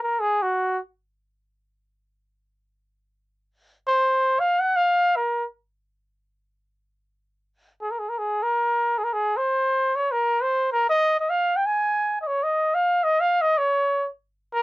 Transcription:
0.03 A#4
0.20 G#4
0.42 F#4
3.86 C5
4.40 F5
4.60 F#5
4.76 F5
5.16 A#4
7.82 G#4
7.91 A#4
7.99 G#4
8.09 A#4
8.18 G#4
8.42 A#4
8.98 G#4
9.04 A#4
9.13 G#4
9.37 C5
9.96 C#5
10.12 A#4
10.42 C5
10.72 A#4
10.90 D#5
11.20 D#5
11.29 F5
11.56 G5
11.66 G#5
12.21 D#5
12.27 C#5
12.43 D#5
12.74 F5
13.03 D#5
13.20 F5
13.41 D#5
13.58 C#5
14.54 A#4

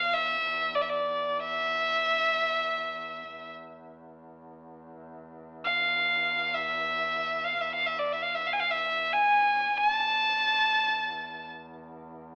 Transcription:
Already playing: E2 F5
0.13 E5
0.75 D5
0.81 E5
0.89 D5
1.40 E5
3.31 E2
5.65 F5
6.55 E5
7.44 F5
7.61 E5
7.75 F5
7.86 E5
7.99 D5
8.12 E5
8.22 F5
8.35 E5
8.47 F5
8.53 G#5
8.60 F5
8.70 E5
9.13 G#5
9.75 E2 G#5
9.90 A5

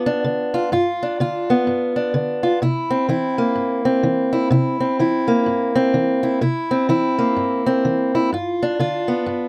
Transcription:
Already playing: G2 B3 F4
0.06 D4
0.24 D3
0.54 F4
0.72 G2 F4
1.03 D4
1.20 D3 F4
1.50 B3
1.67 G2
1.96 D4
2.14 D3
2.43 F4
2.62 C3 E4
2.90 C4
3.09 E3 E4
3.38 A#3
3.56 G2
3.85 C4
4.03 E3
4.33 E4
4.50 C3 E4
4.80 C4
4.99 E3 E4
5.28 A#3
5.46 G2
5.75 C4
5.94 E3
6.23 E4
6.41 C3 E4
6.71 C4
6.89 E3 E4
7.18 A#3
7.36 G2
7.66 C4
7.85 E3
8.15 E4
8.33 G2 F4
8.63 D4
8.79 D3 F4
9.08 B3
9.26 G2

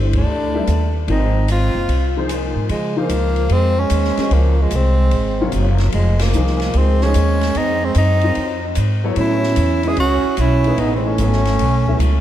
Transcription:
Already playing: G1 E3 A3 D4 G4 C5
0.13 A3, kick, ride
0.18 D4
0.26 D2
0.54 G3 C4 F4 B4 E5
0.67 D#2, hi-hat pedal, ride
1.08 G#1 F3 A#3 C4 D#4 G#4 C5, ride
1.48 C4 F4, hi-hat pedal, ride
1.75 F#1
1.88 C2, ride
2.17 F3 A#3 D#4 G#4 C5
2.29 hi-hat pedal, ride
2.56 G#2
2.69 C#3 F3 G#3, ride
2.96 F3 A#3 D#4 G#4 C5
3.09 C#2, hi-hat pedal, ride
3.36 ride
3.50 F2 G#3 C4, ride
3.77 G#3 C#4
3.90 D#2, hi-hat pedal, ride
4.04 snare
4.17 G#3 C#4 F#4 C5 D#5, muted upright bass stroke, snare, ride
4.31 C#2 F3 A#3, ride
4.60 F3 G#3
4.71 C2 G#3, hi-hat pedal, ride
4.75 C4
5.11 G#1, ride
5.41 C3 F#3 F4 A#4 C#5
5.52 F#1, hi-hat pedal, ride
5.78 snare, ride
5.92 F1 F3 G#3, ride
6.19 F3 A#3, snare, ride
6.33 C2 F3 A#3 D#4 G#4 C5, hi-hat pedal
6.47 snare
6.60 snare, ride
6.74 C#2 G#3 C4, ride
7.01 F3 G#3 A#3 C#4 D#4 G#4 C5, snare
7.14 D#2, hi-hat pedal, ride
7.41 snare, ride
7.55 F2 C4 D#4, ride
7.84 G#3 C4
7.95 F#2 C4 D#4, hi-hat pedal, ride
8.21 F#3 C4 F4 A#4 C#5, ride
8.35 F2, ride
8.75 G#2, hi-hat pedal, ride
9.04 F#3 B3 E4 A4 C#5
9.16 A2 C#4, ride
9.20 E4
9.43 snare
9.56 E2, hi-hat pedal, ride
9.83 G#3 C#4 E4 F#4 B4 D#5, ride
9.88 G#4
9.97 C#2 C#4 F#4, ride
10.24 muted upright bass stroke
10.37 B1 C#4 E4, hi-hat pedal, ride
10.64 E3 A3 D#4 G#4 B4, ride
10.77 A1 B3 D#4, ride
10.96 G#3 C4
11.07 A3 C#4
11.18 G#1 F#3 B3 E4 A4 C#5, hi-hat pedal, ride
11.33 snare
11.45 snare, ride
11.59 B1, ride
11.87 F#3 B3 E4 A4 E5, kick
11.99 C#2, hi-hat pedal, ride

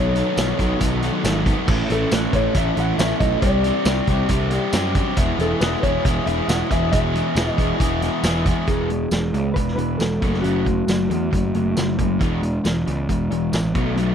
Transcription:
Already playing: B1 B2 D#3 F#3 B3 D#4 A4 C#5
0.15 B2 D#3 F#3 B3 D#4 A4, closed hi-hat
0.36 B1 B2 D#3 F#3 B3 D#4 A4, snare, closed hi-hat, tambourine
0.58 B1 B2 D#3 F#3 B3 D#4 A4, kick, closed hi-hat
0.80 B1 B2 D#3 F#3 B3 D#4 A4, kick, closed hi-hat
1.01 B2 D#3 F#3 B3 D#4 A4, closed hi-hat
1.22 G#1 B2 D#3 F#3 B3 D#4 A4, snare, closed hi-hat, tambourine
1.45 B2 D#3 F#3 B3 D#4 A4, kick, closed hi-hat
1.67 A1 A2 E3 A3 C#4 E4 A4, kick, crash
1.89 A1 A2 E3 A3 C#4 E4 A4, closed hi-hat
2.12 A1 A2 E3 A3 C#4 E4 A4 B4, snare, closed hi-hat, tambourine
2.33 A1 A2 E3 A3 C#4 E4 A4 C#5, kick, closed hi-hat
2.54 A1 A2 E3 A3 C#4 E4 A4 E5, kick, closed hi-hat
2.76 A1 A2 E3 A3 C#4 E4 A4 F#5, closed hi-hat
2.98 A1 A2 E3 A3 C#4 E4 A4 E5, snare, closed hi-hat, tambourine
3.19 B1 A2 E3 A3 C#4 E4 A4 D#5, kick, closed hi-hat
3.42 C2 C3 G3 C4 D4 G4 D5, kick, closed hi-hat
3.64 C3 G3 C4 D4 G4, closed hi-hat
3.85 C2 C3 G3 C4 D4 G4, snare, closed hi-hat, tambourine
4.07 C2 C3 G3 C4 D4 G4, kick, closed hi-hat
4.29 C2 C3 G3 C4 D4 G4, kick, closed hi-hat
4.51 C3 G3 C4 D4 G4, closed hi-hat
4.73 F#2 C3 G3 C4 D4 G4, snare, closed hi-hat, tambourine
4.95 C3 G3 C4 D4 G4, kick, closed hi-hat
5.17 E1 E3 G#3 B3 E4 G#4, kick, closed hi-hat
5.38 E1 E3 G#3 B3 E4 G#4 A4, closed hi-hat
5.61 E1 E3 G#3 B3 E4 G#4 B4, snare, closed hi-hat, tambourine
5.83 E1 E3 G#3 B3 E4 G#4 C#5, kick, closed hi-hat
6.05 E1 E3 G#3 B3 E4 G#4 E5, kick, closed hi-hat
6.26 E1 E3 G#3 B3 E4 G#4 E5, closed hi-hat
6.48 E1 E3 G#3 B3 E4 G#4 F#5, snare, closed hi-hat, tambourine
6.70 E1 E3 G#3 B3 E4 G#4 E5, kick, closed hi-hat
6.92 E1 E3 G#3 B3 E4 G#4 E5, kick, closed hi-hat
7.14 E3 G#3 B3 E4 G#4, closed hi-hat
7.35 E1 E3 G#3 B3 E4 G#4, snare, closed hi-hat, tambourine
7.49 D#5
7.58 E1 E3 G#3 B3 E4 G#4, kick, closed hi-hat
7.79 E1 E3 G#3 B3 E4 G#4, kick, closed hi-hat
8.02 E3 G#3 B3 E4 G#4, closed hi-hat
8.23 E1 E3 G#3 B3 E4 G#4, snare, closed hi-hat, tambourine
8.46 E3 G#3 B3 E4 G#4, kick, closed hi-hat
8.67 E1 E3 G#3 B3 G#4, kick, closed hi-hat
8.90 E3 G#3, closed hi-hat
9.11 E1 E3 G#3, snare, closed hi-hat, tambourine
9.33 C#2 E3 G#3, closed hi-hat
9.54 E1 E3 G#3 B4, kick, closed hi-hat
9.68 snare
9.76 E1 E3 G#3 B4, closed hi-hat
9.98 E1 E3 G#3 A4, snare, closed hi-hat, tambourine
10.22 F#1 F#3 A3 C#4, kick, closed hi-hat
10.34 snare
10.41 F#1 F#3 A3 C#4 F#4, closed hi-hat
10.66 F#3 A3, kick, closed hi-hat
10.88 F#1 F#3 A3, snare, closed hi-hat, tambourine
11.10 E2 F#3 A3, closed hi-hat
11.31 F#1 F#3 A3, kick, closed hi-hat
11.54 F#1 F#3 A3, closed hi-hat
11.77 F#1 F#3 A3, snare, closed hi-hat, tambourine
11.99 F#1 F#3 A3, kick, closed hi-hat
12.20 E1 E3 G#3 B3, kick, closed hi-hat
12.42 E3 G#3, closed hi-hat
12.64 E1 E3 G#3, snare, closed hi-hat, tambourine
12.86 C#2 E3 G#3, closed hi-hat
13.09 E1 E3 G#3, kick, closed hi-hat
13.30 E1 E3 G#3, closed hi-hat
13.53 A1 E3 G#3, snare, closed hi-hat, tambourine
13.75 B1 B2 F#3 A3, kick, closed hi-hat
13.96 B1 B2 F#3 A3, closed hi-hat

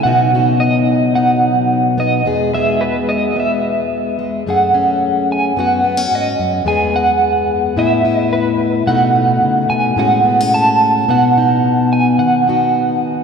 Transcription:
0.03 B2 F#3 B3 D#4 F#4 F#5
0.34 B3 D#4 F#4
0.60 D#5
1.15 D#4 F#5
1.98 B3 D#5
2.25 E2 G#3 B3 G#4
2.54 G#3 B3 G#4 E5
2.81 B4
3.09 D#5
3.29 D#5
3.36 B3 E5
4.19 G#3
4.47 F#2 A3 C#4 G#4 F#5
4.74 C#4
5.32 G#5
5.56 F#2 B3 C#4 F#4 F#5
5.84 B3
5.97 C#4
6.11 G#2 D#5
6.39 F#2
6.65 E2 G#3 B3 G#4 G#5
6.93 B3 F#5
7.76 A2 B3 E4 E5
8.05 E4
8.16 D#5
8.33 B4
8.87 B2 A3 D#4 F#4 F#5
9.16 D#4
9.42 C#3
9.70 B2 G#5
9.96 A2 G#3 C#4 F#4 F#5
10.25 B3
10.41 C#4
10.54 A5
11.08 B2 B3 D#4 F#4 F#5
11.38 D#4
11.93 G#5
12.19 D#3 F#5
12.48 B3 D#4 F#4

